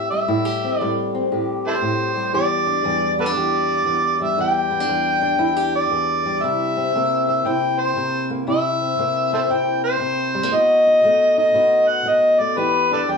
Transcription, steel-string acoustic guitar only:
0.00 0.27 A2 medium
0.00 0.11 G3 medium
0.00 0.26 C4 medium
0.00 0.28 G4 medium
0.12 0.81 G3 soft
0.28 0.79 A2 medium
0.28 0.45 E4 medium
0.45 1.31 G4 soft
0.64 1.13 C4 medium
0.81 1.31 A2 medium
0.81 2.16 G3 medium
1.15 2.32 C4 medium
1.32 1.80 A2 medium
1.32 2.34 G4 medium
1.81 2.33 A2 medium
2.16 2.85 G3 soft
2.34 2.84 E2 medium
2.34 3.36 G4 medium
2.67 3.18 D4 medium
2.84 3.36 E2 medium
2.84 4.21 G3 medium
3.19 3.26 B3 medium
3.26 4.37 D4 soft
3.36 3.85 E2 medium
3.36 4.38 G4 medium
3.86 4.37 E2 medium
4.21 4.88 G3 soft
4.38 4.87 E2 medium
4.38 5.38 G4 medium
4.71 4.80 B3 medium
4.80 5.20 D4 soft
4.88 5.37 E2 medium
4.88 6.25 G3 medium
5.21 6.40 D4 medium
5.39 5.89 E2 medium
5.39 5.56 E4 medium
5.56 6.42 G4 medium
5.90 6.42 E2 medium
6.26 6.95 G3 medium
6.44 6.95 C3 medium
6.44 7.46 E4 medium
6.77 7.28 C4 medium
6.95 7.45 C3 medium
6.95 8.29 A#3 medium
7.28 8.46 C4 medium
7.46 7.95 C3 medium
7.46 8.46 E4 medium
7.96 8.45 C3 medium
8.30 8.45 A#3 medium
8.47 8.97 C3 medium
8.47 9.49 E4 medium
8.81 9.32 C4 soft
8.98 9.50 C3 medium
8.98 10.34 A#3 medium
9.33 10.51 C4 medium
9.51 9.98 C3 medium
9.51 10.52 E4 medium
10.00 10.49 C3 medium
10.35 10.43 G3 medium
10.43 10.52 A#3 soft
10.52 11.03 B2 medium
10.52 11.54 F#4 medium
10.87 11.36 D#4 medium
11.04 11.53 B2 medium
11.04 12.39 A3 medium
11.38 12.55 D#4 medium
11.54 12.04 B2 medium
11.54 12.55 F#4 medium
12.05 12.55 B2 medium
12.40 12.55 A3 medium
12.56 13.07 E2 medium
12.56 13.18 G4 medium
12.91 13.18 D4 medium
13.08 13.18 E2 medium
13.08 13.18 G3 medium

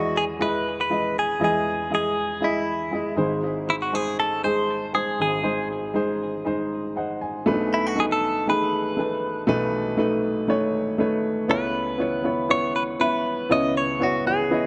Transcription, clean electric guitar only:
0.00 0.17 F#4 medium
0.17 0.24 G#4 medium
0.42 0.80 B4 medium
0.81 1.18 B4 medium
1.19 1.43 G#4 medium
1.44 1.94 G#4 medium
1.95 2.45 G#4 medium
2.44 3.15 E4 medium
3.70 3.75 E4 medium
3.82 3.95 F#4 medium
3.95 4.19 G#4 medium
4.20 4.43 A4 medium
4.44 4.94 C5 medium
4.95 5.20 G#4 medium
5.22 5.68 G#4 medium
7.74 7.87 E4 medium
7.87 7.98 F#4 medium
8.00 8.05 G#4 medium
8.12 8.49 A4 medium
8.50 10.96 B4 medium
11.51 12.51 B4 medium
12.51 12.75 C#5 medium
12.76 12.83 B4 medium
13.01 13.52 B4 medium
13.52 13.77 D#5 medium
13.77 14.03 C#5 medium
14.03 14.27 F#4 medium
14.27 14.67 G#4 medium

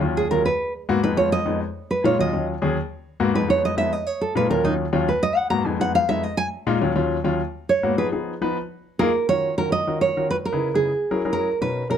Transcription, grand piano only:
0.01 0.21 D#2 medium
0.01 0.21 F#3 medium
0.01 0.21 C#4 medium
0.01 0.22 F4 medium
0.31 0.45 D#2 medium
0.31 0.45 F#3 medium
0.31 0.45 C#4 medium
0.31 0.45 F4 medium
0.89 0.99 G#2 loud
0.89 0.99 A#3 medium
0.89 0.99 B3 medium
0.89 0.99 F#4 loud
1.03 1.13 F2 medium
1.03 1.13 G#3 medium
1.03 1.13 B3 medium
1.03 1.13 D#4 medium
1.17 1.37 F2 medium
1.17 1.37 G#3 medium
1.17 1.37 B3 medium
1.17 1.37 F4 medium
1.46 1.60 F2 medium
1.46 1.60 G#3 medium
1.46 1.60 B3 medium
1.46 1.60 D#4 medium
2.04 2.14 A#2 medium
2.04 2.14 G#3 medium
2.04 2.14 D#4 medium
2.04 2.14 F4 loud
2.19 2.29 D#2 medium
2.19 2.29 F#3 medium
2.19 2.29 C#4 medium
2.19 2.29 F4 medium
2.33 2.53 D#2 medium
2.33 2.53 F#3 medium
2.33 2.53 C#4 medium
2.33 2.53 F4 medium
2.62 2.76 D#2 loud
2.62 2.76 F#3 medium
2.62 2.76 C#4 medium
2.62 2.76 G#4 medium
3.20 3.30 G#2 loud
3.20 3.30 A#3 loud
3.20 3.30 B3 medium
3.20 3.30 F#4 loud
3.34 3.44 F2 medium
3.34 3.44 G#3 medium
3.34 3.44 B3 medium
3.34 3.44 D#4 medium
3.48 3.68 F2 medium
3.48 3.68 G#3 medium
3.48 3.69 B3 medium
3.48 3.68 D#4 medium
3.77 3.92 F2 medium
3.77 3.92 G#3 medium
3.77 3.92 B3 medium
3.77 3.92 D#4 medium
4.35 4.45 A#2 medium
4.35 4.45 G#3 medium
4.35 4.45 D#4 medium
4.35 4.45 F4 medium
4.50 4.60 D#2 medium
4.50 4.60 F#3 medium
4.50 4.60 C#4 medium
4.50 4.60 F4 medium
4.64 4.84 D#2 medium
4.64 4.84 F#3 medium
4.64 4.84 C#4 medium
4.64 4.84 F4 medium
4.93 5.07 D#2 medium
4.93 5.07 F#3 medium
4.93 5.07 C#4 medium
4.93 5.07 F4 loud
5.50 5.61 G#2 medium
5.50 5.61 A#3 medium
5.50 5.61 B3 medium
5.50 5.61 F#4 medium
5.65 5.75 F2 medium
5.65 5.76 G#3 medium
5.65 5.76 B3 medium
5.65 5.76 D#4 medium
5.79 6.00 F2 medium
5.79 6.00 G#3 medium
5.79 6.00 B3 medium
5.79 6.00 D#4 medium
6.09 6.23 F2 medium
6.09 6.23 G#3 medium
6.09 6.24 B3 medium
6.09 6.24 D#4 medium
6.67 6.77 A#2 loud
6.67 6.77 G#3 medium
6.67 6.77 D#4 loud
6.67 6.77 F4 loud
6.81 6.92 D#2 medium
6.81 6.92 F#3 medium
6.81 6.92 C#4 medium
6.81 6.92 F4 loud
6.95 7.16 D#2 medium
6.95 7.16 F#3 medium
6.95 7.16 C#4 medium
6.95 7.16 F4 loud
7.24 7.39 D#2 medium
7.24 7.39 F#3 medium
7.24 7.39 C#4 medium
7.24 7.39 F4 loud
7.83 7.93 G#2 medium
7.83 7.93 A#3 medium
7.83 7.93 B3 medium
7.83 7.93 F#4 medium
7.98 8.08 F3 medium
7.98 8.08 B3 medium
7.98 8.08 D#4 medium
7.98 8.08 G#4 medium
8.12 8.33 F3 medium
8.12 8.33 B3 medium
8.12 8.33 D#4 medium
8.12 8.33 G#4 medium
8.41 8.56 F3 medium
8.41 8.56 B3 medium
8.41 8.56 D#4 medium
8.41 8.56 B4 loud
8.99 9.10 A#3 loud
8.99 9.10 D#4 medium
8.99 9.10 F4 loud
8.99 9.10 G#4 loud
9.29 9.49 D#3 medium
9.29 9.49 C#4 medium
9.29 9.49 F4 medium
9.29 9.49 F#4 medium
9.29 9.49 A#4 medium
9.58 9.78 D#3 medium
9.58 9.78 C#4 medium
9.58 9.78 F4 medium
9.58 9.78 F#4 medium
9.58 9.78 A#4 medium
9.87 10.07 D#3 medium
9.87 10.07 C#4 medium
9.87 10.07 F4 medium
9.87 10.07 F#4 medium
9.87 10.07 A#4 medium
10.17 10.31 D#3 medium
10.17 10.31 C#4 medium
10.17 10.31 F4 medium
10.17 10.31 F#4 medium
10.17 10.31 A#4 medium
10.52 10.68 C#3 medium
10.52 10.68 D#4 medium
10.52 10.67 E4 medium
10.52 10.68 G#4 medium
10.52 10.68 B4 medium
10.74 10.89 C#3 medium
10.74 10.89 D#4 medium
10.74 10.89 E4 medium
10.74 10.89 G#4 medium
10.74 10.89 B4 medium
11.11 11.21 F#3 medium
11.11 11.21 C#4 medium
11.11 11.21 E4 medium
11.11 11.21 G#4 medium
11.11 11.21 A#4 medium
11.25 11.47 F#3 medium
11.25 11.47 C#4 medium
11.25 11.47 E4 medium
11.25 11.47 G#4 medium
11.25 11.47 A#4 medium
11.61 11.82 B2 medium
11.61 11.82 C#4 medium
11.61 11.82 D#4 medium
11.61 11.82 A#4 medium
11.89 11.98 B2 medium
11.89 11.98 C#4 medium
11.89 11.98 D#4 medium
11.89 11.98 A#4 medium

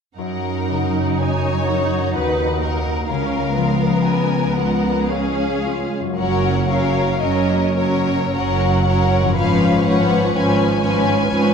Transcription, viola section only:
0.18 3.05 D#4 soft
3.09 3.57 C#4 soft
3.57 5.07 B3 soft
5.10 5.98 C#4 soft
6.19 6.68 F#3 soft
6.19 6.68 C#4 soft
6.70 7.21 F#3 soft
6.70 7.21 C#4 soft
7.22 7.77 F#3 soft
7.22 7.77 C#4 soft
7.78 8.34 F#3 soft
7.78 8.34 C#4 soft
8.36 8.87 F#3 soft
8.36 8.87 C#4 soft
8.89 9.37 F#3 soft
8.89 9.37 C#4 soft
9.39 9.87 F3 soft
9.39 9.87 C#4 soft
9.88 10.35 F3 soft
9.88 10.35 C#4 soft
10.36 10.83 F3 soft
10.36 10.83 C#4 soft
10.84 11.30 F3 soft
10.84 11.30 C#4 soft
11.31 11.54 F3 soft
11.31 11.54 C#4 soft

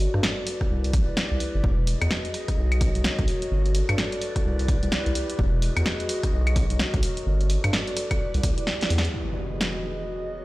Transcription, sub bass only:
0.14 0.20 G2 medium
0.70 0.95 C2 medium
0.93 1.04 G1 medium
1.31 1.38 C2 medium
1.55 1.61 G1 loud
1.64 1.95 E1 loud
2.01 2.08 E2 medium
2.57 2.89 B1 medium
2.95 3.02 B1 medium
3.19 3.25 B1 medium
3.51 3.82 G1 loud
3.89 3.95 G2 medium
4.45 4.76 C2 medium
4.83 4.89 C2 medium
5.06 5.13 C2 medium
5.39 5.70 E1 loud
5.76 5.83 E2 medium
6.32 6.64 B1 medium
6.70 6.77 B1 medium
6.94 7.00 B1 medium
7.26 7.57 G1 loud
7.64 7.70 G2 medium
8.34 8.41 C2 medium
8.90 9.08 E2 medium

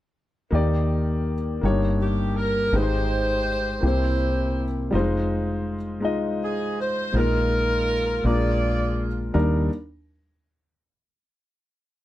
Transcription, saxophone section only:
2.02 2.35 G4 medium
2.37 2.73 A#4 medium
2.75 3.81 D#4 medium
2.75 3.82 G4 medium
2.75 3.84 C5 medium
3.85 4.92 E4 medium
3.85 4.92 G4 medium
3.85 4.63 C5 medium
6.43 6.76 G#4 medium
6.80 7.15 C5 medium
7.16 8.21 D#4 medium
7.16 8.21 F4 medium
7.16 8.26 A#4 medium
8.25 9.31 F4 medium
8.25 9.31 G#4 medium
8.25 9.07 D5 medium

